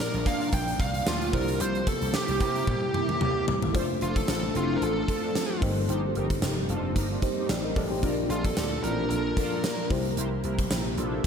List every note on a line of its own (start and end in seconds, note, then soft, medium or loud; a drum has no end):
0.00 0.22 A#2 medium
0.00 1.31 F3 medium
0.00 1.29 A#3 medium
0.00 1.31 A#3 medium
0.00 1.30 D4 medium
0.00 1.31 D4 medium
0.00 1.30 F4 medium
0.00 0.27 A#4 loud
0.00 1.34 D5 medium
0.14 0.23 A#1 medium
0.14 closed hi-hat medium
0.26 0.46 A#2 loud
0.26 0.49 D4 loud
0.26 0.49 F4 loud
0.26 0.49 A#4 loud
0.26 0.54 F5 loud
0.26 kick medium
0.26 closed hi-hat medium
0.41 closed hi-hat soft
0.52 0.73 A#1 loud
0.52 0.81 G5 loud
0.52 kick medium
0.52 closed hi-hat loud
0.68 closed hi-hat medium
0.80 1.00 C2 medium
0.80 1.05 F5 loud
0.80 kick loud
0.80 closed hi-hat medium
0.94 closed hi-hat medium
1.07 1.35 D2 medium
1.07 1.35 F4 medium
1.07 snare loud
1.07 tambourine medium
1.21 closed hi-hat medium
1.32 1.53 C2 loud
1.32 3.72 C3 medium
1.32 2.10 C3 medium
1.32 3.72 G3 medium
1.32 3.43 A#3 medium
1.32 3.72 A#3 medium
1.32 3.43 E4 medium
1.32 3.72 E4 medium
1.32 3.44 G4 medium
1.32 1.61 A#4 medium
1.32 3.44 C5 medium
1.32 kick loud
1.32 open hi-hat medium
1.48 closed hi-hat medium
1.60 1.80 C2 loud
1.60 1.86 C5 loud
1.60 closed hi-hat loud
1.75 closed hi-hat medium
1.87 2.15 A4 medium
1.87 kick medium
1.87 closed hi-hat medium
2.02 2.11 C2 medium
2.02 closed hi-hat medium
2.14 2.41 G4 medium
2.14 snare loud
2.14 tambourine medium
2.28 2.38 C2 medium
2.28 closed hi-hat medium
2.40 2.61 C3 loud
2.40 2.63 E4 loud
2.40 2.63 G4 loud
2.40 3.44 G4 medium
2.40 2.63 A#4 loud
2.40 kick loud
2.40 closed hi-hat medium
2.55 closed hi-hat soft
2.67 2.87 A#2 loud
2.67 kick medium
2.67 high tom medium
2.94 mid tom medium
3.09 mid tom medium
3.21 3.32 C3 medium
3.21 mid tom medium
3.48 3.59 C2 medium
3.48 floor tom loud
3.62 3.72 G1 loud
3.62 floor tom medium
3.73 3.95 F1 medium
3.73 5.60 F3 medium
3.73 5.58 A3 medium
3.73 7.99 C4 medium
3.73 5.58 D4 medium
3.73 5.60 D4 medium
3.73 5.58 F4 medium
3.73 3.86 F4 loud
3.73 5.60 A4 medium
3.73 3.86 A4 loud
3.73 3.86 C5 loud
3.73 5.59 C5 medium
3.73 kick loud
3.73 closed hi-hat loud
4.01 4.22 F1 loud
4.01 4.13 D4 medium
4.01 4.13 F4 medium
4.01 4.16 F4 medium
4.01 4.13 A4 medium
4.01 closed hi-hat medium
4.16 4.53 A4 loud
4.16 kick medium
4.16 closed hi-hat medium
4.28 4.48 A1 medium
4.28 4.40 D4 medium
4.28 4.40 F4 medium
4.28 4.40 A4 medium
4.28 snare loud
4.28 closed hi-hat medium
4.55 4.75 F1 medium
4.55 4.76 C4 loud
4.55 4.76 E4 loud
4.55 4.77 F4 medium
4.55 4.76 G4 loud
4.55 closed hi-hat medium
4.76 4.82 A#4 medium
4.82 5.02 A1 medium
4.82 4.94 D4 medium
4.82 4.94 F4 medium
4.82 4.93 A4 loud
4.82 5.59 A4 medium
4.82 closed hi-hat medium
5.08 5.30 D4 loud
5.08 5.30 F4 medium
5.08 5.30 A4 loud
5.08 kick loud
5.08 closed hi-hat medium
5.35 snare loud
5.35 closed hi-hat medium
5.60 5.82 G1 loud
5.60 6.38 G2 medium
5.60 8.01 G3 medium
5.60 7.19 A#3 medium
5.60 7.19 D#4 medium
5.60 8.01 D#4 medium
5.60 7.19 G4 medium
5.60 7.20 C5 medium
5.60 kick loud
5.60 open hi-hat medium
5.89 6.09 G1 loud
5.89 6.01 D#4 loud
5.89 6.01 G4 loud
5.89 6.01 C5 loud
5.89 closed hi-hat loud
6.15 6.36 G1 medium
6.15 6.27 D#4 medium
6.15 6.27 G4 medium
6.15 6.27 A#4 loud
6.15 closed hi-hat medium
6.30 kick medium
6.30 closed hi-hat soft
6.42 6.62 F1 medium
6.42 6.54 D#4 medium
6.42 6.54 G4 medium
6.42 6.54 A#4 medium
6.42 snare loud
6.42 closed hi-hat medium
6.69 6.96 F1 medium
6.69 6.90 D4 medium
6.69 6.91 F4 loud
6.69 6.90 A4 loud
6.69 closed hi-hat medium
6.96 7.16 G1 medium
6.96 7.08 D#4 medium
6.96 7.08 G4 medium
6.96 7.08 A#4 loud
6.96 kick medium
6.96 closed hi-hat medium
7.11 7.20 A#3 medium
7.11 7.20 D4 medium
7.11 7.20 F4 medium
7.22 8.01 A#3 medium
7.22 8.03 D#4 medium
7.22 7.49 G4 medium
7.22 7.50 C5 medium
7.22 kick medium
7.22 closed hi-hat medium
7.38 7.47 C4 loud
7.38 7.47 D#4 loud
7.38 7.47 G4 loud
7.49 7.70 A1 medium
7.49 7.64 D5 medium
7.49 7.63 G5 medium
7.49 snare loud
7.49 closed hi-hat medium
7.64 7.76 A#4 medium
7.64 7.76 D#5 medium
7.76 7.96 A1 medium
7.76 7.91 A4 medium
7.76 7.90 D5 medium
7.76 kick medium
7.76 open hi-hat medium
7.91 8.17 G4 medium
7.91 8.16 C5 medium
8.02 8.23 A#1 loud
8.02 8.79 A#2 medium
8.02 9.89 F3 medium
8.02 9.86 A#3 medium
8.02 11.27 A#3 medium
8.02 9.87 D4 medium
8.02 8.15 D4 loud
8.02 9.89 D4 medium
8.02 8.15 F4 loud
8.02 9.87 F4 medium
8.02 8.15 A#4 loud
8.02 9.87 D5 medium
8.02 kick loud
8.02 closed hi-hat loud
8.30 8.50 A#1 medium
8.30 8.42 D4 medium
8.30 8.42 F4 medium
8.30 8.44 F4 medium
8.30 8.42 A4 medium
8.30 closed hi-hat medium
8.45 8.83 A4 loud
8.45 kick medium
8.45 closed hi-hat medium
8.57 8.77 D2 medium
8.57 8.68 D4 medium
8.57 8.68 F4 medium
8.57 8.68 A4 medium
8.57 snare loud
8.57 closed hi-hat loud
8.83 9.04 A1 medium
8.83 9.05 C4 loud
8.83 9.05 E4 medium
8.83 9.05 G4 loud
8.83 9.08 A#4 medium
8.83 closed hi-hat medium
9.10 9.30 A#1 medium
9.10 9.22 D4 medium
9.10 9.22 F4 medium
9.10 9.22 A4 loud
9.10 9.86 A#4 medium
9.10 closed hi-hat medium
9.37 9.58 D4 loud
9.37 9.58 F4 loud
9.37 9.58 A4 loud
9.37 kick medium
9.37 closed hi-hat medium
9.64 snare loud
9.64 closed hi-hat medium
9.89 10.11 C2 medium
9.89 11.27 C3 medium
9.89 10.67 C3 medium
9.89 11.27 G3 medium
9.89 11.27 A#3 medium
9.89 11.27 E4 medium
9.89 11.27 G4 medium
9.89 11.27 C5 medium
9.89 kick loud
9.89 open hi-hat medium
10.05 closed hi-hat medium
10.17 10.37 C2 medium
10.17 10.29 E4 loud
10.17 10.29 G4 loud
10.17 10.29 C5 loud
10.17 closed hi-hat loud
10.44 10.64 C2 medium
10.44 10.56 E4 medium
10.44 10.56 G4 medium
10.44 10.56 A#4 loud
10.44 closed hi-hat medium
10.59 kick medium
10.59 closed hi-hat medium
10.71 10.91 A#1 medium
10.71 10.82 E4 medium
10.71 10.82 G4 medium
10.71 10.82 A#4 medium
10.71 snare loud
10.71 closed hi-hat loud
10.97 11.17 A#1 medium
10.97 11.19 D4 loud
10.97 11.19 F4 loud
10.97 11.19 A4 loud
10.97 closed hi-hat medium